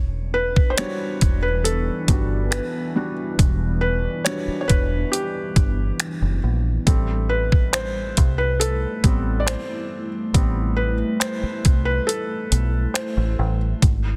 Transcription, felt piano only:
0.34 0.72 B4 medium
0.70 0.78 C5 medium
0.78 1.36 G3 medium
0.78 1.36 D4 soft
0.78 1.37 F#4 medium
0.78 1.45 C#5 loud
1.43 1.63 B4 medium
1.64 2.54 A4 medium
2.09 2.48 G3 soft
2.09 2.48 D4 soft
2.09 2.49 F#4 soft
2.51 3.13 B4 medium
2.96 4.24 G3 medium
2.96 4.25 D4 medium
2.96 4.25 F#4 medium
3.81 4.27 B4 medium
4.25 4.65 G3 soft
4.25 4.66 D4 soft
4.25 4.66 F#4 medium
4.25 4.59 C#5 loud
4.61 4.69 C#5 medium
4.68 5.09 B4 medium
5.12 6.39 G4 medium
6.87 9.03 G3 medium
6.87 10.31 A3 medium
6.87 9.04 C4 medium
7.29 7.75 B4 medium
7.73 8.35 C5 loud
8.38 8.61 B4 medium
8.60 9.43 A4 medium
9.04 9.44 G3 soft
9.04 9.44 B3 soft
9.04 9.44 C4 medium
9.40 9.47 D5 medium
9.47 10.08 C5 medium
10.34 10.92 G3 medium
10.34 10.93 B3 soft
10.34 10.93 C4 medium
10.77 11.18 B4 medium
11.20 11.88 C5 loud
11.85 12.08 B4 medium
12.07 12.97 A4 medium
12.94 13.56 C5 medium

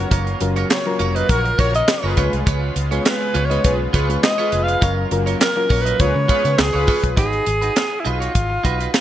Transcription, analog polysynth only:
1.29 1.42 F#4 loud
1.29 1.42 A#4 loud
1.29 1.42 C#5 loud
1.58 1.72 F#4 loud
1.58 1.72 A#4 loud
1.58 1.72 C#5 loud
2.03 2.45 F4 medium
2.03 2.44 G#4 loud
2.03 2.44 B4 loud
3.65 3.78 F4 loud
3.65 3.78 G#4 loud
3.65 3.78 B4 loud
3.94 4.07 F4 loud
3.94 4.07 G#4 loud
3.94 4.07 B4 loud
4.39 4.80 F4 loud
4.39 4.80 G#4 loud
4.39 4.80 B4 loud
6.00 6.13 F4 medium
6.00 6.13 G#4 medium
6.00 6.13 B4 loud
6.29 6.42 F4 loud
6.29 6.42 G#4 loud
6.29 6.42 B4 loud
6.74 7.15 F4 medium
6.74 7.15 G#4 loud
6.74 7.15 B4 loud

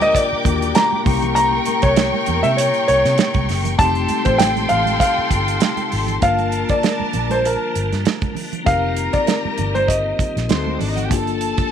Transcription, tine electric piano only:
0.00 0.41 A#3 medium
0.00 0.42 D4 medium
0.00 0.42 F4 medium
0.00 0.43 G4 medium
0.45 1.03 A#3 soft
0.45 1.06 D4 soft
0.45 1.06 F4 soft
0.45 0.53 F#4 soft
0.53 1.06 G4 medium
1.04 3.44 A#3 medium
1.04 3.45 C#4 medium
1.04 3.45 E4 medium
1.04 3.45 G4 medium
3.78 6.18 A3 medium
3.78 6.18 C4 medium
3.78 6.19 D#4 medium
3.78 6.19 G4 medium
6.21 8.62 A#3 medium
6.21 8.62 D4 medium
6.21 8.63 F4 medium
6.21 8.63 A5 medium
8.64 10.45 C4 medium
8.64 10.46 D#4 medium
8.64 10.46 G4 medium
8.64 10.47 A#4 medium
10.49 11.11 C4 medium
10.49 11.11 D#4 soft
10.49 11.11 F#4 soft
10.49 10.57 G#4 soft
10.57 11.14 A4 medium
11.09 11.71 A#3 medium
11.09 11.71 D4 medium
11.09 11.71 F4 medium
11.09 11.19 G4 medium
11.19 11.71 A4 medium

